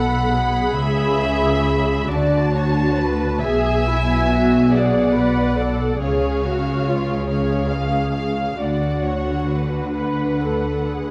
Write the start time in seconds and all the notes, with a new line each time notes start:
Already playing: B1 B2 A4 F#5 B5
0.33 G#4
0.76 C#2 C#3 E5
2.09 D2 D3 F#4 D5 A5
2.54 C#5
2.98 B4
3.41 B1 B2 G#4 E5 G#5
3.87 E4
4.30 F#4
4.73 G#4 D5 F#5
5.16 B4
5.59 A4
6.01 C#2 C#3 G#4 C#5 F5
6.46 F#4
6.87 F4
7.28 G#4 C#5 F5
7.69 F5
8.13 F5
8.59 D2 D3 F#4 D5 F#5
9.05 C#5
9.50 B4
9.96 B4 F#5
10.45 A4
10.93 G#4